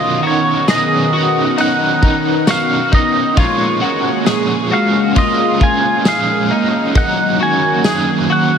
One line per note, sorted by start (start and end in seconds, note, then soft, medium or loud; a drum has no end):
0.00 0.23 B2 medium
0.00 3.34 D#3 medium
0.00 0.24 F#3 medium
0.00 3.34 B3 medium
0.00 0.24 C#4 medium
0.00 0.25 D#4 medium
0.00 0.23 F4 medium
0.00 0.22 A#4 medium
0.00 3.34 A#4 medium
0.00 0.27 D#5 medium
0.23 0.70 D#4 medium
0.23 0.67 F#4 medium
0.23 0.68 A#4 medium
0.27 0.69 C#4 soft
0.27 0.71 C#5 medium
0.68 1.13 B2 medium
0.68 1.14 F#3 medium
0.68 1.14 C#4 medium
0.68 1.14 D#4 medium
0.68 1.13 G#4 medium
0.68 1.11 A#4 medium
0.68 1.55 D#5 medium
0.68 snare loud
0.68 ride medium
0.68 tambourine medium
1.12 1.59 D#4 medium
1.12 1.58 F#4 medium
1.12 1.58 A#4 medium
1.17 1.58 C#4 soft
1.57 2.02 F#3 medium
1.57 2.03 C#4 medium
1.57 2.01 D#4 medium
1.57 2.04 D#4 medium
1.57 2.45 F#5 loud
1.57 ride medium
1.62 2.01 A#4 medium
2.02 2.47 D#4 medium
2.02 2.49 D#4 medium
2.02 2.47 A#4 medium
2.02 kick medium
2.07 2.47 C#4 soft
2.47 2.92 B2 medium
2.47 2.92 F#3 medium
2.47 2.93 C#4 medium
2.47 2.93 D#4 medium
2.47 2.92 F#4 medium
2.47 2.90 A#4 medium
2.47 2.94 F5 medium
2.47 snare loud
2.47 ride medium
2.47 tambourine medium
2.91 3.37 D#4 medium
2.91 3.38 D#4 soft
2.91 3.37 A#4 medium
2.91 3.39 D#5 loud
2.91 kick loud
2.96 3.37 C#4 soft
3.36 3.81 A#2 medium
3.36 3.82 F3 medium
3.36 6.91 G#3 medium
3.36 3.82 G#3 medium
3.36 8.58 A#3 medium
3.36 3.82 C#4 medium
3.36 3.81 F4 medium
3.36 6.91 G#4 medium
3.36 3.79 A#4 medium
3.36 4.69 C#5 loud
3.36 kick loud
3.36 ride medium
3.80 4.27 C#4 soft
3.80 4.27 F4 medium
3.80 4.26 F#4 medium
3.80 4.26 A#4 medium
3.85 4.26 G#3 soft
4.26 4.71 A#2 medium
4.26 4.72 F3 medium
4.26 4.72 G#3 medium
4.26 4.72 C#4 medium
4.26 4.71 F4 medium
4.26 4.71 G#4 medium
4.26 4.69 A#4 medium
4.26 snare loud
4.26 ride medium
4.26 tambourine medium
4.70 5.16 C#4 soft
4.70 5.16 F4 medium
4.70 5.16 F#4 medium
4.70 5.15 A#4 medium
4.70 5.18 F5 medium
4.75 5.14 G#3 soft
5.15 5.60 G#3 medium
5.15 5.61 C#4 medium
5.15 5.60 F4 medium
5.15 5.63 D#5 loud
5.15 kick medium
5.15 ride medium
5.59 6.05 C#4 soft
5.59 6.06 F4 medium
5.59 6.05 A#4 medium
5.59 6.08 G#5 loud
5.59 kick medium
5.64 6.05 G#3 soft
6.04 6.50 A#2 medium
6.04 6.50 F3 medium
6.04 6.51 G#3 medium
6.04 6.51 C#4 medium
6.04 6.49 F4 medium
6.04 6.51 G#4 medium
6.04 6.48 A#4 medium
6.04 6.97 F5 loud
6.04 snare loud
6.04 ride medium
6.04 tambourine medium
6.49 6.96 C#4 soft
6.49 6.94 D#4 medium
6.49 6.95 F4 medium
6.49 6.94 A#4 medium
6.54 6.96 G#3 soft
6.94 7.40 F#2 medium
6.94 7.40 D#3 medium
6.94 8.58 D#3 medium
6.94 8.58 F#3 medium
6.94 7.40 F#3 medium
6.94 7.40 A#3 medium
6.94 7.40 D#4 medium
6.94 7.37 A#4 medium
6.94 7.42 F#5 loud
6.94 kick loud
6.94 ride medium
7.39 7.84 A#3 soft
7.39 7.85 C#4 soft
7.39 7.85 F#4 medium
7.39 7.84 A#4 medium
7.43 7.84 F#3 soft
7.43 8.32 G#5 loud
7.84 8.29 F#2 medium
7.84 8.29 D#3 medium
7.84 8.30 F#3 medium
7.84 8.30 A#3 medium
7.84 8.29 C#4 medium
7.84 8.30 G#4 medium
7.84 8.27 A#4 medium
7.84 snare loud
7.84 ride medium
7.84 tambourine medium
8.29 8.58 A#3 soft
8.29 8.58 C#4 medium
8.29 8.58 F#4 medium
8.29 8.58 A#4 medium
8.29 8.58 F#5 medium
8.33 8.58 F#3 soft